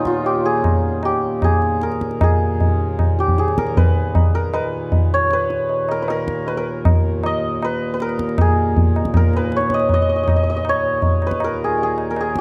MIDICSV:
0, 0, Header, 1, 4, 480
1, 0, Start_track
1, 0, Tempo, 388853
1, 801, Time_signature, 4, 2, 24, 8
1, 7993, Tempo, 379507
1, 15496, End_track
2, 0, Start_track
2, 0, Title_t, "Santur"
2, 0, Program_c, 0, 15
2, 0, Note_on_c, 0, 59, 76
2, 0, Note_on_c, 0, 61, 80
2, 0, Note_on_c, 0, 63, 77
2, 0, Note_on_c, 0, 68, 82
2, 83, Note_on_c, 0, 65, 80
2, 147, Note_off_c, 0, 68, 0
2, 320, Note_on_c, 0, 67, 75
2, 562, Note_on_c, 0, 68, 88
2, 636, Note_off_c, 0, 67, 0
2, 1298, Note_on_c, 0, 67, 78
2, 1372, Note_off_c, 0, 68, 0
2, 1780, Note_on_c, 0, 68, 80
2, 1854, Note_off_c, 0, 67, 0
2, 2258, Note_on_c, 0, 70, 74
2, 2332, Note_off_c, 0, 59, 0
2, 2751, Note_off_c, 0, 68, 0
2, 2756, Note_on_c, 0, 68, 76
2, 3643, Note_off_c, 0, 61, 0
2, 3949, Note_on_c, 0, 67, 70
2, 4023, Note_off_c, 0, 68, 0
2, 4186, Note_on_c, 0, 68, 69
2, 4230, Note_off_c, 0, 65, 0
2, 4260, Note_off_c, 0, 67, 0
2, 4302, Note_off_c, 0, 63, 0
2, 4419, Note_off_c, 0, 70, 0
2, 4424, Note_on_c, 0, 70, 78
2, 4657, Note_on_c, 0, 71, 87
2, 4731, Note_off_c, 0, 70, 0
2, 5368, Note_on_c, 0, 70, 87
2, 5442, Note_off_c, 0, 71, 0
2, 5605, Note_on_c, 0, 71, 89
2, 5679, Note_off_c, 0, 70, 0
2, 6342, Note_on_c, 0, 73, 98
2, 6577, Note_off_c, 0, 71, 0
2, 6581, Note_on_c, 0, 71, 90
2, 7299, Note_on_c, 0, 70, 91
2, 7374, Note_off_c, 0, 71, 0
2, 7435, Note_on_c, 0, 71, 60
2, 7509, Note_off_c, 0, 70, 0
2, 7531, Note_on_c, 0, 70, 92
2, 7605, Note_off_c, 0, 71, 0
2, 7930, Note_off_c, 0, 68, 0
2, 7995, Note_on_c, 0, 71, 85
2, 8071, Note_off_c, 0, 70, 0
2, 8117, Note_on_c, 0, 70, 81
2, 8193, Note_off_c, 0, 71, 0
2, 8985, Note_on_c, 0, 75, 98
2, 9473, Note_on_c, 0, 71, 90
2, 9530, Note_off_c, 0, 73, 0
2, 9549, Note_off_c, 0, 70, 0
2, 9837, Note_off_c, 0, 71, 0
2, 9842, Note_on_c, 0, 71, 70
2, 9944, Note_on_c, 0, 70, 84
2, 10020, Note_off_c, 0, 71, 0
2, 10442, Note_on_c, 0, 68, 80
2, 11394, Note_off_c, 0, 70, 0
2, 11399, Note_on_c, 0, 70, 88
2, 11647, Note_on_c, 0, 71, 88
2, 11723, Note_off_c, 0, 70, 0
2, 11900, Note_on_c, 0, 73, 84
2, 11993, Note_off_c, 0, 75, 0
2, 12124, Note_on_c, 0, 75, 90
2, 12367, Note_off_c, 0, 75, 0
2, 12372, Note_on_c, 0, 75, 93
2, 12472, Note_off_c, 0, 75, 0
2, 12477, Note_on_c, 0, 75, 65
2, 12564, Note_off_c, 0, 75, 0
2, 12569, Note_on_c, 0, 75, 66
2, 12648, Note_off_c, 0, 75, 0
2, 12653, Note_on_c, 0, 75, 58
2, 12741, Note_off_c, 0, 75, 0
2, 12746, Note_on_c, 0, 75, 61
2, 12810, Note_off_c, 0, 75, 0
2, 12816, Note_on_c, 0, 75, 57
2, 12903, Note_off_c, 0, 75, 0
2, 12908, Note_on_c, 0, 75, 61
2, 12994, Note_off_c, 0, 75, 0
2, 12999, Note_on_c, 0, 75, 59
2, 13074, Note_off_c, 0, 75, 0
2, 13079, Note_on_c, 0, 75, 71
2, 13161, Note_off_c, 0, 75, 0
2, 13166, Note_on_c, 0, 75, 64
2, 13321, Note_off_c, 0, 73, 0
2, 13326, Note_on_c, 0, 73, 94
2, 14048, Note_off_c, 0, 71, 0
2, 14053, Note_on_c, 0, 71, 84
2, 14276, Note_on_c, 0, 70, 87
2, 14279, Note_off_c, 0, 68, 0
2, 14352, Note_off_c, 0, 71, 0
2, 14527, Note_on_c, 0, 68, 75
2, 14761, Note_off_c, 0, 68, 0
2, 14766, Note_on_c, 0, 68, 77
2, 15110, Note_off_c, 0, 70, 0
2, 15115, Note_on_c, 0, 70, 75
2, 15236, Note_off_c, 0, 68, 0
2, 15241, Note_on_c, 0, 68, 77
2, 15496, Note_off_c, 0, 68, 0
2, 15496, Note_off_c, 0, 70, 0
2, 15496, Note_off_c, 0, 73, 0
2, 15496, Note_off_c, 0, 75, 0
2, 15496, End_track
3, 0, Start_track
3, 0, Title_t, "Harmonium"
3, 0, Program_c, 1, 20
3, 0, Note_on_c, 1, 39, 63
3, 0, Note_on_c, 1, 46, 65
3, 2704, Note_off_c, 1, 46, 0
3, 2717, Note_off_c, 1, 39, 0
3, 2723, Note_on_c, 1, 46, 67
3, 2736, Note_on_c, 1, 39, 64
3, 10399, Note_off_c, 1, 39, 0
3, 10403, Note_off_c, 1, 46, 0
3, 10418, Note_on_c, 1, 39, 64
3, 10422, Note_on_c, 1, 46, 69
3, 15496, Note_off_c, 1, 39, 0
3, 15496, Note_off_c, 1, 46, 0
3, 15496, End_track
4, 0, Start_track
4, 0, Title_t, "Tabla"
4, 64, Note_on_c, 9, 37, 56
4, 188, Note_off_c, 9, 37, 0
4, 305, Note_on_c, 9, 63, 75
4, 428, Note_off_c, 9, 63, 0
4, 793, Note_on_c, 9, 60, 74
4, 793, Note_on_c, 9, 64, 64
4, 916, Note_off_c, 9, 60, 0
4, 916, Note_off_c, 9, 64, 0
4, 1270, Note_on_c, 9, 60, 69
4, 1393, Note_off_c, 9, 60, 0
4, 1753, Note_on_c, 9, 60, 74
4, 1753, Note_on_c, 9, 64, 68
4, 1877, Note_off_c, 9, 60, 0
4, 1877, Note_off_c, 9, 64, 0
4, 2000, Note_on_c, 9, 62, 56
4, 2124, Note_off_c, 9, 62, 0
4, 2240, Note_on_c, 9, 62, 73
4, 2363, Note_off_c, 9, 62, 0
4, 2365, Note_on_c, 9, 62, 54
4, 2485, Note_on_c, 9, 37, 54
4, 2489, Note_off_c, 9, 62, 0
4, 2603, Note_on_c, 9, 62, 53
4, 2608, Note_off_c, 9, 37, 0
4, 2726, Note_off_c, 9, 62, 0
4, 2728, Note_on_c, 9, 60, 95
4, 2728, Note_on_c, 9, 64, 86
4, 2851, Note_off_c, 9, 60, 0
4, 2851, Note_off_c, 9, 64, 0
4, 3215, Note_on_c, 9, 63, 67
4, 3215, Note_on_c, 9, 64, 63
4, 3338, Note_off_c, 9, 63, 0
4, 3338, Note_off_c, 9, 64, 0
4, 3690, Note_on_c, 9, 60, 71
4, 3690, Note_on_c, 9, 64, 67
4, 3813, Note_off_c, 9, 60, 0
4, 3813, Note_off_c, 9, 64, 0
4, 3936, Note_on_c, 9, 62, 57
4, 4052, Note_on_c, 9, 64, 48
4, 4059, Note_off_c, 9, 62, 0
4, 4175, Note_off_c, 9, 64, 0
4, 4176, Note_on_c, 9, 62, 76
4, 4297, Note_off_c, 9, 62, 0
4, 4297, Note_on_c, 9, 62, 60
4, 4416, Note_on_c, 9, 37, 58
4, 4421, Note_off_c, 9, 62, 0
4, 4526, Note_on_c, 9, 62, 54
4, 4540, Note_off_c, 9, 37, 0
4, 4649, Note_off_c, 9, 62, 0
4, 4654, Note_on_c, 9, 63, 73
4, 4654, Note_on_c, 9, 64, 68
4, 4778, Note_off_c, 9, 63, 0
4, 4778, Note_off_c, 9, 64, 0
4, 5123, Note_on_c, 9, 60, 69
4, 5123, Note_on_c, 9, 64, 62
4, 5247, Note_off_c, 9, 60, 0
4, 5247, Note_off_c, 9, 64, 0
4, 5599, Note_on_c, 9, 60, 75
4, 5722, Note_off_c, 9, 60, 0
4, 6072, Note_on_c, 9, 63, 75
4, 6072, Note_on_c, 9, 64, 73
4, 6196, Note_off_c, 9, 63, 0
4, 6196, Note_off_c, 9, 64, 0
4, 6548, Note_on_c, 9, 62, 78
4, 6671, Note_off_c, 9, 62, 0
4, 6792, Note_on_c, 9, 62, 58
4, 6916, Note_off_c, 9, 62, 0
4, 7027, Note_on_c, 9, 63, 69
4, 7150, Note_off_c, 9, 63, 0
4, 7266, Note_on_c, 9, 60, 59
4, 7390, Note_off_c, 9, 60, 0
4, 7507, Note_on_c, 9, 60, 76
4, 7630, Note_off_c, 9, 60, 0
4, 7749, Note_on_c, 9, 37, 59
4, 7872, Note_off_c, 9, 37, 0
4, 7983, Note_on_c, 9, 63, 75
4, 8109, Note_off_c, 9, 63, 0
4, 8470, Note_on_c, 9, 60, 79
4, 8470, Note_on_c, 9, 64, 68
4, 8597, Note_off_c, 9, 60, 0
4, 8597, Note_off_c, 9, 64, 0
4, 8954, Note_on_c, 9, 60, 73
4, 9080, Note_off_c, 9, 60, 0
4, 9447, Note_on_c, 9, 60, 77
4, 9574, Note_off_c, 9, 60, 0
4, 9924, Note_on_c, 9, 62, 79
4, 10036, Note_off_c, 9, 62, 0
4, 10036, Note_on_c, 9, 62, 56
4, 10162, Note_off_c, 9, 62, 0
4, 10164, Note_on_c, 9, 37, 60
4, 10287, Note_on_c, 9, 62, 63
4, 10291, Note_off_c, 9, 37, 0
4, 10402, Note_on_c, 9, 60, 100
4, 10402, Note_on_c, 9, 64, 83
4, 10413, Note_off_c, 9, 62, 0
4, 10529, Note_off_c, 9, 60, 0
4, 10529, Note_off_c, 9, 64, 0
4, 10890, Note_on_c, 9, 63, 71
4, 10890, Note_on_c, 9, 64, 62
4, 11017, Note_off_c, 9, 63, 0
4, 11017, Note_off_c, 9, 64, 0
4, 11138, Note_on_c, 9, 60, 58
4, 11250, Note_on_c, 9, 37, 54
4, 11264, Note_off_c, 9, 60, 0
4, 11362, Note_on_c, 9, 60, 76
4, 11362, Note_on_c, 9, 64, 67
4, 11377, Note_off_c, 9, 37, 0
4, 11489, Note_off_c, 9, 60, 0
4, 11489, Note_off_c, 9, 64, 0
4, 11608, Note_on_c, 9, 62, 57
4, 11734, Note_off_c, 9, 62, 0
4, 11844, Note_on_c, 9, 62, 73
4, 11956, Note_off_c, 9, 62, 0
4, 11956, Note_on_c, 9, 62, 55
4, 12070, Note_on_c, 9, 37, 57
4, 12082, Note_off_c, 9, 62, 0
4, 12192, Note_on_c, 9, 62, 54
4, 12197, Note_off_c, 9, 37, 0
4, 12315, Note_on_c, 9, 63, 74
4, 12315, Note_on_c, 9, 64, 66
4, 12319, Note_off_c, 9, 62, 0
4, 12442, Note_off_c, 9, 63, 0
4, 12442, Note_off_c, 9, 64, 0
4, 12801, Note_on_c, 9, 60, 71
4, 12801, Note_on_c, 9, 64, 65
4, 12927, Note_off_c, 9, 60, 0
4, 12927, Note_off_c, 9, 64, 0
4, 13271, Note_on_c, 9, 60, 72
4, 13397, Note_off_c, 9, 60, 0
4, 13745, Note_on_c, 9, 63, 74
4, 13745, Note_on_c, 9, 64, 67
4, 13871, Note_off_c, 9, 63, 0
4, 13871, Note_off_c, 9, 64, 0
4, 13995, Note_on_c, 9, 60, 56
4, 14110, Note_on_c, 9, 37, 58
4, 14121, Note_off_c, 9, 60, 0
4, 14226, Note_on_c, 9, 60, 73
4, 14237, Note_off_c, 9, 37, 0
4, 14352, Note_off_c, 9, 60, 0
4, 14703, Note_on_c, 9, 63, 73
4, 14829, Note_off_c, 9, 63, 0
4, 14955, Note_on_c, 9, 60, 59
4, 15081, Note_off_c, 9, 60, 0
4, 15189, Note_on_c, 9, 60, 70
4, 15316, Note_off_c, 9, 60, 0
4, 15431, Note_on_c, 9, 37, 56
4, 15496, Note_off_c, 9, 37, 0
4, 15496, End_track
0, 0, End_of_file